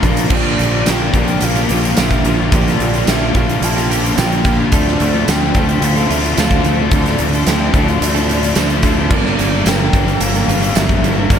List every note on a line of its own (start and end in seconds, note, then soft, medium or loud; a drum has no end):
0.00 0.25 A#1 medium
0.00 0.28 D3 medium
0.00 0.30 F3 medium
0.00 0.29 F3 medium
0.00 0.31 A#3 medium
0.00 0.31 D4 medium
0.00 0.30 D4 medium
0.00 0.29 F4 medium
0.00 0.31 A#4 medium
0.00 0.32 A#4 medium
0.00 kick medium
0.00 closed hi-hat medium
0.04 0.30 A#3 medium
0.17 closed hi-hat medium
0.29 0.57 A#1 loud
0.29 0.85 A#2 medium
0.29 0.86 A#2 loud
0.29 0.72 D3 medium
0.29 0.86 D3 loud
0.29 0.58 F3 medium
0.29 0.46 A#3 loud
0.29 0.45 D4 loud
0.29 0.43 F4 loud
0.29 kick loud
0.29 crash loud
0.33 0.58 A#3 loud
0.33 0.59 F4 loud
0.33 0.61 G4 loud
0.33 0.91 D5 loud
0.43 0.73 A#3 medium
0.43 0.72 D4 medium
0.43 0.70 F4 medium
0.58 0.86 A#1 medium
0.58 0.75 F3 medium
0.58 2.52 F3 medium
0.58 0.74 A#3 medium
0.58 0.74 F4 medium
0.58 0.73 G4 medium
0.58 closed hi-hat medium
0.71 0.86 A#3 medium
0.71 0.88 A#3 medium
0.71 0.86 D4 medium
0.71 0.87 F4 medium
0.71 0.89 F4 medium
0.71 0.89 G4 medium
0.76 0.88 F3 medium
0.85 1.13 A#1 loud
0.85 1.96 A#2 medium
0.85 1.97 A#2 loud
0.85 1.12 D3 loud
0.85 1.42 D3 loud
0.85 1.14 F3 loud
0.85 1.14 A#3 loud
0.85 1.41 A#3 medium
0.85 1.15 A#3 loud
0.85 1.15 D4 medium
0.85 1.16 F4 loud
0.85 1.15 F4 loud
0.85 snare loud
0.85 closed hi-hat loud
0.85 tambourine medium
0.90 1.17 G4 loud
0.90 1.45 G5 loud
1.14 1.40 A#1 medium
1.14 1.55 D3 medium
1.14 1.29 F3 medium
1.14 1.30 A#3 medium
1.14 1.28 A#3 medium
1.14 1.96 D4 medium
1.14 1.29 D4 medium
1.14 1.29 F4 medium
1.14 1.27 F4 medium
1.14 1.27 G4 medium
1.14 kick medium
1.14 closed hi-hat medium
1.28 1.58 A#3 medium
1.28 1.57 D4 medium
1.28 1.56 F4 medium
1.28 muted clean electric guitar stroke medium
1.28 closed hi-hat soft
1.41 1.68 A#1 loud
1.41 2.23 A#3 medium
1.41 1.98 F5 loud
1.41 closed hi-hat loud
1.55 1.84 F3 medium
1.55 1.83 A#3 medium
1.55 1.70 A#3 medium
1.55 1.72 D4 medium
1.55 1.73 F4 medium
1.55 1.83 F4 medium
1.55 1.82 G4 medium
1.55 closed hi-hat soft
1.69 1.96 A#1 medium
1.69 1.96 D3 medium
1.69 1.86 A#3 medium
1.69 1.85 D4 medium
1.69 1.83 F4 loud
1.69 3.07 G4 medium
1.69 closed hi-hat medium
1.83 1.97 A#3 medium
1.83 1.99 D4 medium
1.83 1.99 F4 medium
1.83 muted clean electric guitar stroke medium
1.83 closed hi-hat soft
1.96 2.23 A#1 medium
1.96 2.52 A#2 medium
1.96 2.50 A#2 loud
1.96 2.24 D3 medium
1.96 2.51 D3 loud
1.96 2.25 F3 loud
1.96 2.25 A#3 loud
1.96 3.35 D4 medium
1.96 2.26 D4 medium
1.96 2.27 F4 loud
1.96 2.37 E5 medium
1.96 snare loud
1.96 closed hi-hat medium
1.96 tambourine loud
2.00 2.27 G4 loud
2.11 kick medium
2.11 closed hi-hat soft
2.24 2.51 A#1 medium
2.24 2.53 D3 medium
2.24 2.41 F3 medium
2.24 3.07 A#3 medium
2.24 2.39 A#3 medium
2.24 2.42 A#3 medium
2.24 2.41 D4 medium
2.24 2.39 F4 medium
2.24 2.40 F4 medium
2.24 2.38 G4 medium
2.24 closed hi-hat medium
2.39 2.52 F3 medium
2.39 2.52 A#3 medium
2.39 2.55 D4 medium
2.39 2.54 F4 medium
2.39 2.56 F4 medium
2.39 2.54 G4 medium
2.43 2.53 A#3 medium
2.52 2.78 A#1 medium
2.52 3.05 A#2 medium
2.52 2.94 A#2 medium
2.52 3.06 D3 loud
2.52 2.94 D3 medium
2.52 2.80 F3 medium
2.52 2.78 F3 medium
2.52 2.79 A#3 loud
2.52 2.68 A#3 medium
2.52 2.68 D4 loud
2.52 2.80 F4 loud
2.52 2.80 G4 loud
2.52 3.11 D5 medium
2.52 kick loud
2.52 closed hi-hat loud
2.56 2.66 F4 loud
2.67 2.96 A#3 medium
2.67 2.95 D4 medium
2.67 2.94 F4 medium
2.67 snare soft
2.67 closed hi-hat soft
2.79 3.06 A#1 medium
2.79 2.95 F3 medium
2.79 6.31 F3 medium
2.79 2.94 A#3 medium
2.79 2.94 F4 medium
2.79 2.92 G4 medium
2.79 closed hi-hat medium
2.93 3.08 F3 medium
2.93 3.07 A#3 medium
2.93 3.08 A#3 medium
2.93 3.09 D4 medium
2.93 3.09 F4 medium
2.93 3.07 G4 medium
2.93 closed hi-hat medium
3.06 3.33 A#1 medium
3.06 3.62 A#2 medium
3.06 3.62 D3 loud
3.06 3.34 D3 loud
3.06 3.33 F3 medium
3.06 3.62 A#3 medium
3.06 3.33 A#3 loud
3.06 3.35 A#3 loud
3.06 3.36 D4 loud
3.06 3.35 F4 loud
3.06 3.38 F4 loud
3.06 3.35 G4 loud
3.06 3.38 E5 loud
3.06 snare loud
3.06 closed hi-hat loud
3.06 tambourine loud
3.34 3.61 A#1 loud
3.34 3.76 D3 medium
3.34 3.48 F3 medium
3.34 3.47 A#3 medium
3.34 3.49 A#3 medium
3.34 4.17 D4 medium
3.34 3.49 D4 medium
3.34 3.48 F4 medium
3.34 3.47 G4 medium
3.34 3.65 F5 loud
3.34 kick medium
3.34 closed hi-hat medium
3.38 3.48 F4 medium
3.48 3.78 A#3 medium
3.48 3.78 D4 medium
3.48 3.76 F4 medium
3.48 muted clean electric guitar stroke soft
3.48 closed hi-hat soft
3.62 4.14 A#1 medium
3.62 4.44 A#3 medium
3.62 4.20 A5 loud
3.62 closed hi-hat loud
3.76 4.05 F3 medium
3.76 4.04 A#3 medium
3.76 3.89 A#3 medium
3.76 3.91 D4 medium
3.76 3.91 F4 medium
3.76 4.04 F4 medium
3.76 4.04 G4 medium
3.76 closed hi-hat soft
3.89 4.16 D3 medium
3.89 4.05 A#3 medium
3.89 4.04 D4 loud
3.89 4.03 F4 medium
3.89 4.72 G4 medium
3.89 closed hi-hat medium
4.04 4.17 A#3 medium
4.04 4.18 D4 medium
4.04 4.19 F4 medium
4.04 muted clean electric guitar stroke soft
4.04 closed hi-hat soft
4.17 4.69 A#1 medium
4.17 4.70 A#2 medium
4.17 4.71 A#2 loud
4.17 4.71 D3 loud
4.17 4.43 D3 medium
4.17 4.44 F3 loud
4.17 4.45 A#3 loud
4.17 4.44 A#3 loud
4.17 5.55 D4 medium
4.17 4.47 D4 medium
4.17 4.47 F4 loud
4.17 4.46 F4 loud
4.17 4.46 G4 loud
4.17 4.59 G5 loud
4.17 snare loud
4.17 closed hi-hat loud
4.17 tambourine loud
4.32 closed hi-hat soft
4.44 4.70 D3 medium
4.44 4.61 F3 medium
4.44 4.72 A#3 medium
4.44 4.60 A#3 medium
4.44 4.59 D4 medium
4.44 4.60 F4 medium
4.44 4.58 F4 medium
4.44 4.58 G4 loud
4.44 kick medium
4.44 closed hi-hat medium
4.58 4.73 F3 medium
4.58 4.72 A#3 medium
4.58 4.74 D4 medium
4.58 4.74 F4 medium
4.58 4.73 F4 medium
4.58 4.71 G4 medium
4.71 4.98 D2 loud
4.71 5.25 D3 medium
4.71 5.27 D3 loud
4.71 4.99 F3 loud
4.71 4.99 A3 medium
4.71 4.88 A3 loud
4.71 5.00 C4 loud
4.71 5.00 D4 loud
4.71 4.87 D4 loud
4.71 4.85 F4 loud
4.71 5.02 A4 loud
4.71 5.30 D5 loud
4.71 kick loud
4.71 closed hi-hat loud
4.85 5.15 A3 medium
4.85 5.14 D4 medium
4.85 5.12 F4 medium
4.85 snare soft
5.00 5.26 D2 medium
5.00 5.28 F3 medium
5.00 5.26 A3 medium
5.00 5.15 C4 medium
5.00 5.14 D4 medium
5.00 5.13 A4 medium
5.00 closed hi-hat medium
5.13 5.26 A3 medium
5.13 5.27 C4 medium
5.13 5.27 D4 medium
5.13 5.28 D4 medium
5.13 5.27 F4 medium
5.13 5.29 A4 medium
5.25 5.53 D2 medium
5.25 5.53 D3 medium
5.25 6.02 D3 medium
5.25 5.54 F3 loud
5.25 5.54 A3 loud
5.25 5.81 A3 medium
5.25 5.54 C4 loud
5.25 5.55 D4 medium
5.25 5.56 D4 medium
5.25 5.56 F4 medium
5.25 5.56 A4 loud
5.25 5.85 G5 loud
5.25 snare loud
5.25 closed hi-hat loud
5.25 tambourine loud
5.53 5.81 D2 loud
5.53 5.95 D3 medium
5.53 5.69 F3 medium
5.53 5.69 A3 medium
5.53 5.68 C4 medium
5.53 6.36 C4 medium
5.53 5.68 D4 medium
5.53 5.69 D4 medium
5.53 5.67 F4 medium
5.53 5.68 A4 medium
5.53 kick medium
5.53 closed hi-hat medium
5.67 5.97 A3 medium
5.67 5.97 D4 medium
5.67 5.95 F4 medium
5.67 muted clean electric guitar stroke soft
5.67 closed hi-hat soft
5.82 6.08 D2 medium
5.82 6.63 A3 medium
5.82 6.12 F5 loud
5.82 closed hi-hat loud
5.95 6.10 A3 medium
5.95 6.25 C4 medium
5.95 6.26 D4 medium
5.95 6.11 D4 medium
5.95 6.12 F4 medium
5.95 6.24 A4 medium
5.95 closed hi-hat soft
6.09 6.35 D2 medium
6.09 6.35 D3 medium
6.09 6.24 A3 medium
6.09 6.24 D4 medium
6.09 8.28 F4 medium
6.09 6.23 F4 medium
6.09 6.40 E5 medium
6.09 closed hi-hat medium
6.23 6.36 A3 medium
6.23 6.38 D4 medium
6.23 6.39 F4 medium
6.23 muted clean electric guitar stroke soft
6.23 closed hi-hat soft
6.36 6.63 D2 medium
6.36 6.64 D3 loud
6.36 6.91 D3 loud
6.36 6.65 F3 loud
6.36 6.65 A3 loud
6.36 7.74 C4 medium
6.36 6.66 C4 loud
6.36 6.66 D4 loud
6.36 6.67 F4 medium
6.36 6.79 F5 loud
6.36 snare loud
6.36 closed hi-hat loud
6.36 tambourine loud
6.40 6.68 D4 loud
6.40 6.67 A4 loud
6.51 kick medium
6.51 closed hi-hat soft
6.64 6.90 D2 medium
6.64 6.92 D3 medium
6.64 6.94 F3 medium
6.64 6.91 A3 medium
6.64 6.80 A3 medium
6.64 6.80 C4 medium
6.64 6.80 D4 medium
6.64 6.79 F4 medium
6.64 6.78 A4 loud
6.64 closed hi-hat medium
6.68 6.80 D4 medium
6.79 6.93 A3 medium
6.79 6.94 C4 medium
6.79 6.95 D4 medium
6.79 6.95 F4 medium
6.79 6.94 A4 medium
6.91 7.17 D2 loud
6.91 7.46 D3 loud
6.91 7.34 D3 medium
6.91 7.20 F3 loud
6.91 7.18 A3 medium
6.91 7.07 A3 medium
6.91 7.20 C4 loud
6.91 7.08 D4 medium
6.91 7.48 D5 loud
6.91 kick loud
6.91 closed hi-hat medium
6.95 7.21 D4 loud
6.95 7.06 F4 loud
6.95 7.21 A4 loud
7.06 7.36 A3 medium
7.06 7.35 D4 medium
7.06 7.35 F4 medium
7.06 snare soft
7.06 closed hi-hat soft
7.18 7.45 D2 medium
7.18 7.48 F3 medium
7.18 7.46 A3 medium
7.18 7.35 C4 medium
7.18 7.35 D4 medium
7.18 7.33 A4 medium
7.18 closed hi-hat medium
7.33 7.47 A3 medium
7.33 7.48 C4 medium
7.33 7.48 D4 medium
7.33 7.49 D4 medium
7.33 7.50 F4 medium
7.33 7.48 A4 medium
7.33 closed hi-hat medium
7.46 7.72 D2 medium
7.46 8.02 D3 loud
7.46 7.73 D3 medium
7.46 7.75 F3 loud
7.46 8.00 A3 medium
7.46 7.74 A3 medium
7.46 7.75 C4 loud
7.46 7.76 D4 loud
7.46 7.76 A4 loud
7.46 7.89 G5 medium
7.46 snare loud
7.46 closed hi-hat loud
7.46 tambourine medium
7.51 7.77 F4 loud
7.74 8.00 D2 medium
7.74 8.15 D3 medium
7.74 7.89 F3 medium
7.74 7.91 A3 medium
7.74 8.54 C4 medium
7.74 7.89 C4 medium
7.74 7.90 D4 medium
7.74 7.89 D4 medium
7.74 7.89 F4 medium
7.74 7.88 A4 medium
7.74 kick medium
7.74 closed hi-hat medium
7.88 8.17 D4 medium
7.88 8.15 F4 medium
7.88 8.04 F5 medium
7.88 muted clean electric guitar stroke medium
7.88 closed hi-hat soft
7.92 8.17 A3 medium
8.01 8.53 D2 medium
8.01 8.82 A3 medium
8.01 8.84 D5 loud
8.01 closed hi-hat loud
8.15 8.30 A3 medium
8.15 8.42 C4 medium
8.15 8.43 D4 medium
8.15 8.31 D4 medium
8.15 8.32 F4 medium
8.15 8.41 A4 medium
8.15 closed hi-hat soft
8.29 8.57 D3 medium
8.29 8.46 A3 medium
8.29 8.46 D4 medium
8.29 10.47 F4 medium
8.29 closed hi-hat medium
8.33 8.44 F4 medium
8.43 8.59 D4 medium
8.43 8.60 F4 medium
8.43 muted clean electric guitar stroke soft
8.43 closed hi-hat medium
8.48 8.57 A3 medium
8.55 9.12 D2 medium
8.55 9.09 D3 loud
8.55 8.84 D3 medium
8.55 8.84 F3 loud
8.55 8.85 A3 medium
8.55 9.11 C4 medium
8.55 8.84 C4 loud
8.55 8.86 D4 loud
8.55 8.85 A4 loud
8.55 snare loud
8.55 closed hi-hat loud
8.55 tambourine loud
8.59 8.86 D4 medium
8.59 8.87 F4 loud
8.70 closed hi-hat medium
8.83 9.10 D3 medium
8.83 9.12 F3 medium
8.83 9.09 A3 medium
8.83 8.99 A3 medium
8.83 9.00 C4 medium
8.83 8.99 D4 medium
8.83 8.97 A4 medium
8.83 kick medium
8.83 closed hi-hat medium
8.88 8.97 F4 medium
8.98 9.11 A3 medium
8.98 9.11 C4 medium
8.98 9.13 D4 medium
8.98 9.14 F4 medium
8.98 9.10 A4 medium
9.10 9.37 G1 loud
9.10 9.65 G2 loud
9.10 9.65 G2 medium
9.10 9.65 D3 medium
9.10 9.53 D3 medium
9.10 9.38 F3 medium
9.10 9.27 G3 medium
9.10 9.37 A#3 medium
9.10 9.40 A#3 loud
9.10 9.26 A#3 medium
9.10 9.26 D4 loud
9.10 9.40 D4 loud
9.10 9.68 D5 loud
9.10 kick loud
9.10 crash medium
9.14 9.24 G4 loud
9.14 9.41 A#4 loud
9.25 9.54 G3 medium
9.25 9.53 A#3 medium
9.25 9.52 D4 medium
9.25 9.51 G4 medium
9.25 snare soft
9.38 9.65 G1 medium
9.38 9.54 F3 medium
9.38 9.64 A#3 medium
9.38 9.54 A#3 medium
9.38 9.53 D4 medium
9.38 9.52 A#4 medium
9.38 closed hi-hat medium
9.51 9.66 F3 medium
9.51 9.67 G3 medium
9.51 9.67 A#3 medium
9.51 9.67 D4 medium
9.51 9.68 G4 medium
9.51 9.68 A#4 medium
9.64 9.92 G1 loud
9.64 10.41 G2 medium
9.64 10.76 G2 medium
9.64 10.21 D3 loud
9.64 9.93 F3 medium
9.64 9.94 G3 loud
9.64 10.20 A#3 medium
9.64 9.94 A#3 loud
9.64 9.95 A#3 loud
9.64 9.95 D4 loud
9.64 9.95 D4 medium
9.64 10.22 G5 loud
9.64 snare loud
9.64 closed hi-hat loud
9.64 tambourine loud
9.68 9.96 G4 loud
9.68 9.95 A#4 loud
9.92 10.19 G1 loud
9.92 10.08 F3 medium
9.92 10.09 G3 medium
9.92 10.08 A#3 medium
9.92 10.09 A#3 medium
9.92 10.73 D4 medium
9.92 10.07 D4 medium
9.92 10.08 D4 medium
9.92 10.07 G4 medium
9.92 10.07 A#4 medium
9.92 kick medium
9.92 closed hi-hat medium
10.07 10.37 G3 medium
10.07 10.36 A#3 medium
10.07 10.35 D4 medium
10.07 10.34 G4 medium
10.07 muted clean electric guitar stroke medium
10.07 closed hi-hat soft
10.20 10.46 G1 loud
10.20 11.02 A#3 medium
10.20 10.77 F5 loud
10.20 closed hi-hat loud
10.35 10.63 F3 medium
10.35 10.47 G3 medium
10.35 10.49 A#3 medium
10.35 10.63 A#3 medium
10.35 10.49 D4 medium
10.35 10.62 D4 medium
10.35 10.50 G4 medium
10.35 10.63 A#4 medium
10.35 closed hi-hat medium
10.48 10.74 G1 loud
10.48 10.65 G3 medium
10.48 10.64 A#3 medium
10.48 10.62 D4 loud
10.48 11.39 F4 medium
10.48 10.62 G4 medium
10.48 closed hi-hat medium
10.62 10.77 G3 medium
10.62 10.78 A#3 medium
10.62 10.77 D4 medium
10.62 10.78 G4 medium
10.62 muted clean electric guitar stroke medium
10.62 closed hi-hat medium
10.75 11.01 G1 medium
10.75 11.30 G2 loud
10.75 11.31 D3 loud
10.75 11.31 D3 medium
10.75 11.03 F3 loud
10.75 11.03 G3 loud
10.75 11.05 A#3 loud
10.75 11.04 A#3 medium
10.75 11.39 D4 medium
10.75 11.05 D4 loud
10.75 11.04 D4 medium
10.75 11.06 A#4 loud
10.75 11.17 E5 loud
10.75 snare loud
10.75 closed hi-hat loud
10.75 tambourine loud
10.79 11.05 G4 medium
10.89 kick medium
10.89 closed hi-hat soft
11.02 11.28 G1 loud
11.02 11.18 F3 medium
11.02 11.19 G3 medium
11.02 11.30 A#3 medium
11.02 11.18 A#3 medium
11.02 11.17 D4 medium
11.02 closed hi-hat medium
11.06 11.16 D4 medium
11.06 11.17 G4 medium
11.06 11.16 A#4 medium
11.16 11.31 F3 medium
11.16 11.32 G3 medium
11.16 11.32 A#3 medium
11.16 11.33 A#3 medium
11.16 11.32 D4 medium
11.16 11.34 G4 medium
11.16 11.34 A#4 medium
11.30 11.39 G1 loud
11.30 11.39 G2 loud
11.30 11.39 G2 medium
11.30 11.39 D3 loud
11.30 11.39 F3 loud
11.30 11.39 G3 loud
11.30 11.39 A#3 medium
11.30 11.39 A#3 loud
11.30 11.39 A#3 medium
11.30 11.39 D4 loud
11.30 11.39 A#4 loud
11.30 11.39 D5 loud
11.30 kick medium
11.30 closed hi-hat medium
11.34 11.39 G4 loud